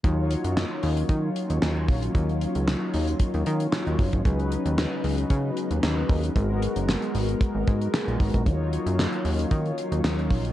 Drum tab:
HH |x-xx--oxx-xx--ox|xxxx--oxxxxx-xox|xxxx--oxx-xx--ox|x-xx-xoxx-xx-xox|
CP |----x-------x---|----x-------x---|----x-------x---|----x-------x---|
SD |----o-------o---|----o-------o---|----o-------o---|----o-------o---|
BD |o-------o-----o-|o-------o-----oo|o-------o-----o-|o-------o-o---oo|

HH |x-xx-xoxxxxx-xox|
CP |----x-------x---|
SD |----o-------o---|
BD |o-------o-----o-|